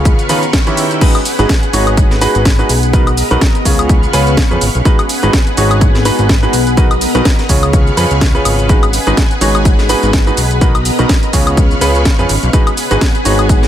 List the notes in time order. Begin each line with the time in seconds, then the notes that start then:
Already playing: C#3 B3 C#4 F4 G#4 B4 C#5 F5 C#6
0.03 C#2 B4, kick, closed hi-hat, shaker
0.19 closed hi-hat, shaker
0.29 D#3 C#4 F4 G#4 B4, open hi-hat, shaker
0.43 closed hi-hat, shaker
0.53 E5 G5, kick, snare, closed hi-hat, shaker
0.67 D#3 E4 G4 B4 C#5, closed hi-hat, shaker
0.77 open hi-hat, shaker
0.91 closed hi-hat, shaker
1.01 G#3 B3 D#4 F#4 G#4 B4 F#5, kick, closed hi-hat, crash, shaker
1.15 closed hi-hat, high woodblock, shaker
1.25 G#4, open hi-hat, shaker
1.39 G#1 G#3 D#4 F#4 G#4 B4, closed hi-hat, shaker
1.49 kick, snare, closed hi-hat, shaker
1.63 closed hi-hat, shaker
1.73 G#1 G#3 D#4 F#4 G#4 C#5, open hi-hat, shaker
1.81 F#5
1.87 closed hi-hat, high woodblock, shaker
1.97 kick, closed hi-hat, shaker
2.11 snare, shaker
2.21 G#3 D#4 F#4 G#4 B4, open hi-hat, shaker
2.35 G#1, closed hi-hat, shaker
2.45 kick, snare, closed hi-hat, shaker
2.59 G#3 D#4 F#4 G#4 B4, shaker
2.69 B1, open hi-hat, shaker
2.83 closed hi-hat, shaker
2.93 B2 D#4 F#4 A#4 B4 D#5, kick, closed hi-hat, shaker
3.07 closed hi-hat, high woodblock, shaker
3.17 open hi-hat, shaker
3.31 B1 B2 D#4 F#4 A#4 B4, closed hi-hat, shaker
3.41 kick, snare, closed hi-hat, shaker
3.55 closed hi-hat, shaker
3.65 C#2 C#3 C#4 F4 G#4 B4 C#5 F5 C#6, kick, open hi-hat, shaker
3.79 closed hi-hat, high woodblock, shaker
3.89 kick, closed hi-hat, shaker
4.03 shaker
4.13 C#2 C#3 C#4 F4 G#4 B4, open hi-hat, shaker
4.20 B4
4.27 closed hi-hat, shaker
4.37 kick, snare, closed hi-hat, shaker
4.51 F2 C#3 C#4 F4 G#4 B4, shaker
4.61 G#1, open hi-hat, shaker
4.75 B1, closed hi-hat, shaker
4.85 G#3 B3 D#4 F#4 G#4 B4 F#5, kick, closed hi-hat, shaker
4.99 closed hi-hat, high woodblock, shaker
5.06 G#4, open hi-hat, shaker
5.23 G#1 G#3 D#4 F#4 G#4 B4, closed hi-hat, shaker
5.33 kick, snare, closed hi-hat, shaker
5.47 closed hi-hat, shaker
5.57 G#1 G#3 D#4 F#4 G#4 C#5 F#5, open hi-hat, shaker
5.71 closed hi-hat, high woodblock, shaker
5.81 kick, closed hi-hat, shaker
5.95 snare, shaker
6.05 G#3 D#4 F#4 G#4 B4, open hi-hat, shaker
6.19 G#1, closed hi-hat, shaker
6.29 kick, snare, closed hi-hat, shaker
6.43 G#3 D#4 F#4 G#4 B4, shaker
6.53 B1, open hi-hat, shaker
6.67 closed hi-hat, shaker
6.77 B2 D#4 F#4 A#4 B4 D#5, kick, closed hi-hat, shaker
6.91 closed hi-hat, high woodblock, shaker
7.01 open hi-hat, shaker
7.15 B1 B2 D#4 F#4 A#4 B4, closed hi-hat, shaker
7.25 kick, snare, closed hi-hat, shaker
7.39 snare, closed hi-hat, shaker
7.49 C#2 C#3 C#4 F4 G#4 B4 C#5 F5 C#6, kick, open hi-hat, shaker
7.63 closed hi-hat, high woodblock, shaker
7.73 kick, closed hi-hat, shaker
7.87 shaker
7.91 B4
7.97 F2 C#3 C#4 F4 G#4 B4, open hi-hat, shaker
8.11 C#2, closed hi-hat, shaker
8.21 kick, snare, closed hi-hat, shaker
8.35 C#3 C#4 F4 G#4 B4, shaker
8.45 G#1, open hi-hat, high woodblock, shaker
8.59 closed hi-hat, shaker
8.69 G#3 B3 D#4 F#4 G#4 B4 F#5, kick, closed hi-hat, shaker
8.83 closed hi-hat, high woodblock, shaker
8.93 open hi-hat, shaker
9.07 G#1 G#3 D#4 F#4 G#4 B4, closed hi-hat, shaker
9.15 G#4, kick, snare, closed hi-hat, shaker
9.31 closed hi-hat, shaker
9.40 G#1 G#3 D#4 F#4 G#4 C#5 F#5, open hi-hat, shaker
9.55 closed hi-hat, high woodblock, shaker
9.65 kick, closed hi-hat, shaker
9.79 snare, shaker
9.89 G#3 D#4 F#4 G#4 B4, open hi-hat, shaker
10.03 G#1, closed hi-hat, shaker
10.13 kick, snare, closed hi-hat, shaker
10.27 G#3 D#4 F#4 G#4 B4, shaker
10.37 B1, open hi-hat, shaker
10.51 closed hi-hat, shaker
10.61 B2 D#4 F#4 A#4 B4 D#5, kick, closed hi-hat, shaker
10.75 closed hi-hat, high woodblock, shaker
10.85 open hi-hat, shaker
10.99 B1 B2 D#4 F#4 A#4 B4, closed hi-hat, shaker
11.09 kick, snare, closed hi-hat, shaker
11.23 closed hi-hat, shaker
11.33 C#2 C#3 C#4 F4 G#4 B4 C#5 F5 C#6, kick, open hi-hat, shaker
11.47 closed hi-hat, high woodblock, shaker
11.57 kick, closed hi-hat, shaker
11.71 shaker
11.81 C#2 C#3 C#4 F4 G#4 B4, open hi-hat, shaker
11.88 B4
11.95 closed hi-hat, shaker
12.05 kick, snare, closed hi-hat, shaker
12.19 F2 C#3 C#4 F4 G#4 B4, shaker
12.29 G#1, open hi-hat, shaker
12.43 B1, closed hi-hat, shaker
12.53 G#3 B3 D#4 F#4 G#4 B4 F#5, kick, closed hi-hat, shaker
12.67 closed hi-hat, high woodblock, shaker
12.77 open hi-hat, shaker
12.88 G#1 G#3 D#4 F#4 G#4 B4, closed hi-hat, shaker
13.01 kick, snare, closed hi-hat, shaker
13.15 closed hi-hat, shaker
13.25 G#1 G#3 D#4 F#4 G#4 C#5, open hi-hat, shaker
13.39 F#5, closed hi-hat, high woodblock, shaker
13.49 kick, closed hi-hat, shaker
13.63 snare, shaker